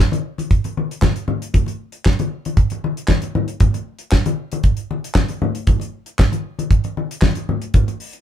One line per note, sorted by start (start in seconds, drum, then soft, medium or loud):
0.00 muted conga soft
0.12 closed hi-hat soft
0.12 muted conga soft
0.12 high conga medium
0.38 closed hi-hat soft
0.38 high conga medium
0.51 kick medium
0.51 closed hi-hat medium
0.51 muted conga soft
0.64 closed hi-hat soft
0.64 muted conga soft
0.77 high conga medium
0.91 closed hi-hat soft
1.02 kick medium
1.02 snare medium
1.02 clap medium
1.02 muted conga soft
1.02 high conga medium
1.16 closed hi-hat soft
1.28 high conga medium
1.28 low conga medium
1.42 closed hi-hat soft
1.54 kick loud
1.54 closed hi-hat medium
1.54 muted conga soft
1.54 low conga medium
1.66 closed hi-hat soft
1.66 muted conga soft
1.92 closed hi-hat soft
2.05 kick loud
2.05 snare medium
2.05 clap medium
2.05 muted conga soft
2.19 closed hi-hat soft
2.19 muted conga soft
2.19 high conga medium
2.45 closed hi-hat soft
2.45 high conga medium
2.57 kick loud
2.57 closed hi-hat soft
2.57 muted conga soft
2.70 closed hi-hat soft
2.70 muted conga soft
2.84 high conga medium
2.97 closed hi-hat soft
3.08 kick medium
3.08 snare medium
3.08 clap medium
3.08 high conga medium
3.22 closed hi-hat soft
3.22 muted conga soft
3.35 high conga medium
3.35 low conga medium
3.48 closed hi-hat soft
3.60 kick loud
3.60 closed hi-hat medium
3.60 muted conga soft
3.60 low conga medium
3.74 closed hi-hat soft
3.74 muted conga soft
3.99 closed hi-hat soft
4.11 kick medium
4.11 snare medium
4.11 clap medium
4.26 closed hi-hat soft
4.26 muted conga soft
4.26 high conga medium
4.52 closed hi-hat soft
4.52 high conga medium
4.63 kick loud
4.63 closed hi-hat medium
4.63 muted conga soft
4.77 closed hi-hat soft
4.91 high conga medium
5.04 closed hi-hat medium
5.14 kick medium
5.14 snare medium
5.14 clap medium
5.14 high conga medium
5.28 closed hi-hat soft
5.28 muted conga soft
5.42 high conga medium
5.42 low conga medium
5.55 closed hi-hat soft
5.67 kick loud
5.67 closed hi-hat medium
5.67 low conga medium
5.80 closed hi-hat soft
5.80 muted conga soft
6.06 closed hi-hat soft
6.19 kick loud
6.19 snare loud
6.19 clap medium
6.19 muted conga soft
6.32 closed hi-hat soft
6.32 high conga medium
6.59 closed hi-hat soft
6.59 high conga medium
6.71 kick loud
6.71 closed hi-hat medium
6.71 muted conga soft
6.84 closed hi-hat soft
6.84 muted conga soft
6.97 high conga medium
7.11 closed hi-hat medium
7.21 kick medium
7.21 snare loud
7.21 clap medium
7.21 high conga medium
7.35 closed hi-hat soft
7.35 muted conga soft
7.49 high conga medium
7.49 low conga medium
7.62 closed hi-hat soft
7.74 kick loud
7.74 closed hi-hat medium
7.74 muted conga soft
7.74 low conga medium
7.88 closed hi-hat soft
7.88 muted conga soft
8.00 open hi-hat medium
8.13 closed hi-hat soft